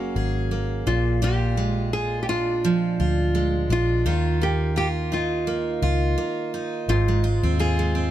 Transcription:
Already playing: fingered electric bass F#1, steel-string acoustic guitar F#3 A#3 C#4 G#4, nylon-string guitar F#4
0.16 fingered electric bass G#1, steel-string acoustic guitar G#4
0.51 steel-string acoustic guitar A#3
0.87 fingered electric bass A#1, steel-string acoustic guitar A#2, nylon-string guitar F4
1.22 steel-string acoustic guitar A#2 F4, nylon-string guitar G4
1.57 steel-string acoustic guitar G#3
1.93 steel-string acoustic guitar F4, nylon-string guitar G#4
2.23 nylon-string guitar G4
2.29 steel-string acoustic guitar D4, nylon-string guitar F4
2.64 steel-string acoustic guitar F3
3.00 fingered electric bass D2, steel-string acoustic guitar F4
3.35 steel-string acoustic guitar G#3
3.70 fingered electric bass A#1, steel-string acoustic guitar D4, nylon-string guitar F4
4.06 fingered electric bass D#2, steel-string acoustic guitar D#3 F4
4.42 steel-string acoustic guitar A#3, nylon-string guitar G4
4.76 steel-string acoustic guitar F4, nylon-string guitar G4
5.12 steel-string acoustic guitar D#4, nylon-string guitar F4
5.47 steel-string acoustic guitar A#3
5.82 fingered electric bass C#2, steel-string acoustic guitar F4
6.18 steel-string acoustic guitar A#3
6.54 steel-string acoustic guitar D#4
6.88 fingered electric bass G#1, steel-string acoustic guitar G#2, nylon-string guitar F4
7.08 steel-string acoustic guitar G#3
7.24 steel-string acoustic guitar F4
7.43 fingered electric bass D#2, steel-string acoustic guitar C4
7.59 steel-string acoustic guitar F4, nylon-string guitar G#4
7.79 steel-string acoustic guitar G#3
7.95 steel-string acoustic guitar C4

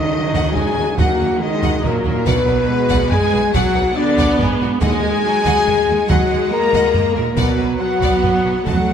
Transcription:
Already playing: cello section D#3, french horn section D#4, trumpet section D#5, violin section D#5
0.12 viola section F#3
0.33 double bass section D#2, violin section D#5 F#5, taiko
0.54 double bass section D#2, cello section G#3, french horn section G#4, violin section A#4 D#5 G#5, trumpet section G#5, taiko low
0.76 double bass section D#2, violin section F#4 A#4
0.96 double bass section D#2, cello section F#3, viola section A#3, french horn section F#4, violin section D#5 F#5, trumpet section F#5, taiko
1.19 double bass section D#2, violin section A#4 D#5
1.39 cello section D#3, viola section G#3, french horn section D#4, trumpet section D#5, violin section D#5
1.62 double bass section D#2, violin section D#5 F#5, taiko
1.82 double bass section D#2, cello section A#2, viola section F#3, french horn section A#3, violin section A#4 D#5, trumpet section A#4, taiko low
2.04 double bass section D#2, cello section A#2, french horn section A#3, violin section F#4 A#4, trumpet section A#4
2.25 double bass section B1, cello section B2, viola section F#3, french horn section B3, violin section B4 D5 F#5, trumpet section B4, taiko
2.47 double bass section B1, violin section B4 D5
2.68 viola section G#3
2.89 double bass section B1, violin section D5 F#5, taiko
3.11 double bass section B1, cello section G#3, french horn section G#4, violin section B4 D5 G#5, trumpet section G#5, taiko low
3.32 double bass section B1, violin section F#4 B4
3.54 double bass section B1, cello section F#3, viola section F#3, french horn section F#4, violin section D5 F#5, trumpet section F#5, taiko
3.74 double bass section B1, violin section B4 D5
3.95 cello section D3, viola section B3, french horn section D4, violin section D5, trumpet section D5
4.17 double bass section B1, violin section D5 F#5, taiko
4.39 double bass section B1, cello section G#2, french horn section G#3, trumpet section G#4, violin section G#4 B4 D5, taiko low
4.60 double bass section B1, violin section F#4 B4
4.81 double bass section D#2, timpani D#3, viola section G#3, cello section G#3, french horn section G#4, violin section D#5 F#5 G#5, trumpet section G#5, taiko
5.02 double bass section D#2, violin section A#4 D#5
5.24 viola section F#3
5.45 double bass section D#2, violin section D#5 F#5, taiko
5.66 double bass section D#2, viola section G#3, violin section A#4 D#5, taiko low
5.88 double bass section D#2, violin section F#4 A#4
6.08 double bass section D#2, cello section F#3, french horn section F#4, violin section D#5 F#5, trumpet section F#5, taiko
6.30 double bass section D#2, violin section A#4 D#5
6.52 cello section A#3, french horn section A#4, trumpet section A#5, violin section A#5
6.72 double bass section D#2, violin section D#5 F#5, taiko
6.94 double bass section D#2, violin section A#4 D#5, taiko low
7.13 double bass section D#2, cello section A#2, french horn section A#3, violin section F#4 A#4, trumpet section A#4
7.36 double bass section B1, cello section B2, viola section F#3, french horn section B3, violin section B4 D5 F#5, trumpet section B4, taiko
7.57 double bass section B1, violin section B4 D5
7.79 cello section F#3, viola section B3, french horn section F#4, violin section F#5, trumpet section F#5
8.01 double bass section B1, violin section D5 F#5, taiko
8.22 double bass section B1, violin section B4 D5, taiko low
8.44 double bass section B1, violin section F#4 B4
8.65 double bass section F2, cello section F#3, viola section A3, french horn section F#4, violin section D#5 F#5 A5, trumpet section F#5, taiko
8.88 double bass section F2, violin section C5 F5

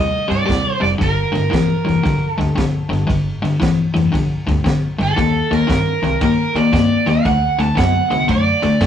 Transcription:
Already playing: upright bass D#2, overdriven electric guitar C3 G3 D#5
0.28 upright bass G2, overdriven electric guitar C3 G3 D5, ride
0.32 snare
0.46 upright bass D#2, overdriven electric guitar C3 G3, kick, ride
0.50 snare
0.80 upright bass F1, overdriven electric guitar C3 G3 D5, ride
0.85 snare
0.98 upright bass G1, overdriven electric guitar G2 D3, kick, ride
1.02 overdriven electric guitar A#4, snare
1.32 upright bass G1, overdriven electric guitar G2 D3, ride
1.36 snare
1.50 upright bass A#1, overdriven electric guitar G2 E3, kick, ride
1.54 snare
1.85 upright bass F1, overdriven electric guitar G2 E3, ride
1.89 snare
2.03 upright bass A#1, overdriven electric guitar G2 D3, kick, snare, ride
2.32 overdriven electric guitar A4
2.38 upright bass D2, overdriven electric guitar G2 D3, snare, ride
2.56 upright bass A#1, overdriven electric guitar G2 D3, kick, snare, ride
2.89 upright bass G1, overdriven electric guitar G2 D3, ride
2.94 snare
3.07 upright bass G1, overdriven electric guitar G2 D3, kick, ride
3.11 snare
3.42 upright bass G1, overdriven electric guitar G2 D3, snare, ride
3.60 upright bass A#1, overdriven electric guitar G2 E3, kick, snare, ride
3.94 upright bass F1, overdriven electric guitar G2 E3, snare, ride
4.12 upright bass A#1, overdriven electric guitar G2 D3, kick, snare, ride
4.47 upright bass D2, overdriven electric guitar G2 D3, snare, ride
4.64 upright bass A#1, overdriven electric guitar G2 D3, kick, snare, ride
4.98 upright bass G1, overdriven electric guitar G2 D3, snare, ride
5.03 overdriven electric guitar A4
5.16 upright bass D#2, overdriven electric guitar D#3 A#3, kick, snare, ride
5.51 upright bass D#2, overdriven electric guitar D#3 A#3 A#4, snare, ride
5.67 upright bass G2, overdriven electric guitar D#3 C4, kick, snare, ride
6.02 upright bass C2, overdriven electric guitar D#3 C4, snare, ride
6.21 upright bass G2, overdriven electric guitar D#3 A#3 A#4, kick, snare, ride
6.54 upright bass A#2, overdriven electric guitar D#3 A#3 D5, snare, ride
6.73 upright bass G2, overdriven electric guitar D#3 A#3, kick, snare, ride
7.06 upright bass D#2, overdriven electric guitar D#3 A#3 F#5, snare, ride
7.25 upright bass D2, overdriven electric guitar D3 A3, kick, snare, ride
7.58 upright bass D2, overdriven electric guitar D3 A3 A5, snare, ride
7.75 upright bass F#2, overdriven electric guitar D3 B3 F#5, kick, snare, ride
8.10 upright bass C2, overdriven electric guitar D3 B3, snare, ride
8.28 upright bass F#2, overdriven electric guitar D3 A3 D5, kick, snare, ride
8.62 upright bass A2, overdriven electric guitar D3 A3, snare, ride
8.81 upright bass F#2, overdriven electric guitar D3 A3, kick, snare, ride

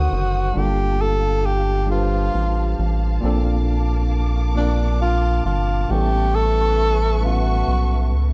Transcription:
Already playing: tine electric piano D3 D#3 C4 F#4 A4 A#4, tenor saxophone F#4, string section C5 F#5 D#6
0.12 analog synth bass F#1
0.54 analog synth bass G1, tine electric piano G3 D4 F4, string section G4
0.58 tine electric piano A#3 A4, tenor saxophone G4, string section F5 A5
1.01 tenor saxophone A4
1.46 tenor saxophone G4
1.86 tine electric piano G3 D4 F4 A4
1.91 tenor saxophone F4, tine electric piano B4
1.99 tine electric piano C5
2.35 analog synth bass A1
2.79 analog synth bass A1
3.21 analog synth bass A#1, tine electric piano A#2 A#3 C4, string section A#3 D6
3.25 tine electric piano D4 A4
4.55 tine electric piano A#2 A#3 C4, tenor saxophone D4
4.59 tine electric piano D4 A#4
5.02 tenor saxophone F4
5.45 analog synth bass G1, tenor saxophone F4
5.88 analog synth bass A1, tine electric piano A2 G3 B3, tenor saxophone G4, string section B4 E5 C#6
5.93 tine electric piano C#4 A4
6.35 tenor saxophone A4
7.20 tine electric piano A2 G3 B3
7.25 tine electric piano C#4 A4, tenor saxophone F#4
7.68 analog synth bass B1
8.12 analog synth bass C#2

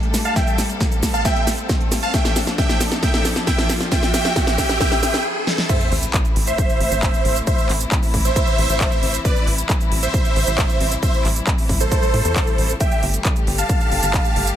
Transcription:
Already playing: string section G3 A3 D4 A4, riser
0.03 closed hi-hat
0.14 snare, open hi-hat, shaker
0.25 supersaw synth F5 A5, closed hi-hat, shaker
0.36 string section C4, supersaw synth E5 G5, kick, snare, closed hi-hat, shaker
0.47 closed hi-hat, shaker
0.58 snare, open hi-hat, shaker
0.69 closed hi-hat, shaker
0.81 kick, snare, closed hi-hat, shaker
0.92 closed hi-hat, shaker
1.03 kick, snare, open hi-hat, shaker
1.14 supersaw synth F5 A5, closed hi-hat, shaker
1.25 supersaw synth E5 G5, kick, snare, closed hi-hat, shaker
1.36 closed hi-hat
1.47 snare, open hi-hat, shaker
1.58 closed hi-hat, shaker
1.69 kick, snare, closed hi-hat, shaker
1.81 closed hi-hat
1.92 snare, open hi-hat, shaker
2.03 supersaw synth F5 A5, closed hi-hat, shaker
2.14 string section F3 D4 A4, supersaw synth E5 G5, kick, snare, closed hi-hat, shaker
2.25 snare, closed hi-hat, shaker
2.36 snare, open hi-hat, shaker
2.47 snare, closed hi-hat, shaker
2.58 supersaw synth E5 G5, kick, snare, closed hi-hat, shaker
2.69 snare, closed hi-hat, shaker
2.81 snare, open hi-hat, shaker
2.92 snare, closed hi-hat, shaker
3.03 supersaw synth E5 G5, kick, snare, closed hi-hat, shaker
3.14 snare, closed hi-hat
3.25 snare, open hi-hat, shaker
3.36 snare, closed hi-hat, shaker
3.47 supersaw synth E5 G5, kick, snare, closed hi-hat, shaker
3.58 snare, closed hi-hat
3.69 snare, open hi-hat, shaker
3.81 snare, closed hi-hat, shaker
3.92 string section G4, supersaw synth E5 G5, kick, snare, closed hi-hat, noise sweep, shaker
4.03 snare, closed hi-hat, shaker
4.14 supersaw synth E5 G5, snare, open hi-hat, shaker
4.25 snare, closed hi-hat, shaker
4.36 supersaw synth E5 G5, kick, snare, closed hi-hat, shaker
4.47 snare, closed hi-hat, shaker
4.58 supersaw synth E5 G5, kick, snare, open hi-hat, shaker
4.69 snare, closed hi-hat, shaker
4.80 supersaw synth E5 G5, kick, snare, closed hi-hat, shaker
4.92 snare, closed hi-hat
5.03 supersaw synth E5 G5, snare, open hi-hat, shaker
5.14 snare, closed hi-hat, shaker
5.47 snare
5.58 snare
5.69 string section C3 E3 A3 E4, supersaw synth C5 E5, kick, closed hi-hat, crash, sub drop, shaker
5.80 closed hi-hat, shaker
5.92 analog synth bass A1, open hi-hat
6.03 closed hi-hat, shaker
6.14 kick, clap, closed hi-hat, shaker
6.25 closed hi-hat, shaker
6.36 analog synth bass A1, open hi-hat
6.47 supersaw synth C5 E5, closed hi-hat, shaker
6.58 kick, closed hi-hat, shaker
6.69 closed hi-hat, shaker
6.80 analog synth bass A1, open hi-hat
6.92 analog synth bass A1, closed hi-hat, shaker
7.03 kick, clap, closed hi-hat, shaker
7.14 closed hi-hat, shaker
7.25 analog synth bass A1, open hi-hat
7.36 closed hi-hat, shaker
7.47 supersaw synth C5 E5, kick, closed hi-hat, shaker
7.58 closed hi-hat, shaker
7.69 analog synth bass A1, clap, open hi-hat
7.81 closed hi-hat, shaker
7.92 kick, clap, closed hi-hat, shaker
8.03 open hi-hat, shaker
8.14 analog synth bass A1, kick, open hi-hat
8.25 supersaw synth C5 E5, shaker
8.36 kick, closed hi-hat, shaker
8.47 closed hi-hat, shaker
8.58 analog synth bass A1, open hi-hat
8.69 analog synth bass A1, shaker
8.81 kick, clap, closed hi-hat, shaker
8.92 closed hi-hat, shaker
9.03 analog synth bass A1, open hi-hat
9.14 closed hi-hat, shaker
9.25 string section G3, supersaw synth B4 D5, kick, closed hi-hat, shaker
9.36 closed hi-hat, shaker
9.47 analog synth bass A1, open hi-hat
9.58 closed hi-hat, shaker
9.69 kick, clap, closed hi-hat, shaker
9.81 closed hi-hat, shaker
9.92 analog synth bass A1, open hi-hat
10.03 supersaw synth C5 E5, closed hi-hat, shaker
10.14 kick, closed hi-hat, shaker
10.25 closed hi-hat, shaker
10.36 analog synth bass A1, open hi-hat
10.47 analog synth bass A1, closed hi-hat, shaker
10.58 kick, clap, closed hi-hat, shaker
10.69 closed hi-hat, shaker
10.80 analog synth bass A1, open hi-hat
10.92 closed hi-hat, shaker
11.03 supersaw synth C5 E5, kick, closed hi-hat, shaker
11.14 closed hi-hat, shaker
11.25 analog synth bass A1, clap, open hi-hat
11.36 shaker
11.47 kick, clap, closed hi-hat, shaker
11.58 open hi-hat, shaker
11.69 analog synth bass A1, kick, open hi-hat
11.80 supersaw synth A4 C5, closed hi-hat, shaker
11.92 kick, closed hi-hat, shaker
12.03 closed hi-hat, shaker
12.14 analog synth bass A2, open hi-hat
12.25 analog synth bass E2, closed hi-hat, shaker
12.36 kick, clap, closed hi-hat, shaker
12.47 closed hi-hat, shaker
12.58 analog synth bass A1, open hi-hat
12.69 closed hi-hat, shaker
12.80 string section D3 A3 G4, supersaw synth E5 G5, kick, closed hi-hat, shaker
12.92 closed hi-hat, shaker
13.03 analog synth bass G1, open hi-hat
13.14 closed hi-hat, shaker
13.25 kick, clap, closed hi-hat, shaker
13.36 closed hi-hat, shaker
13.47 analog synth bass G1, open hi-hat
13.58 supersaw synth F5 A5, closed hi-hat, shaker
13.69 kick, closed hi-hat, shaker
13.81 closed hi-hat, shaker
13.92 analog synth bass G1, open hi-hat
14.03 analog synth bass G1, closed hi-hat, shaker
14.14 kick, clap, closed hi-hat, shaker
14.25 closed hi-hat, shaker
14.36 analog synth bass G1, open hi-hat
14.47 closed hi-hat, shaker

